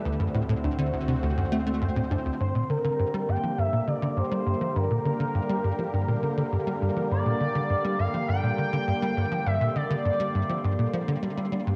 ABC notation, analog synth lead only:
X:1
M:4/4
L:1/8
Q:1/4=102
K:C
V:1 name="Analog synth lead"
z8 | [K:Gm] c B2 g =e d c2 | B6- B z | d3 f g4 |
=e d6 z |]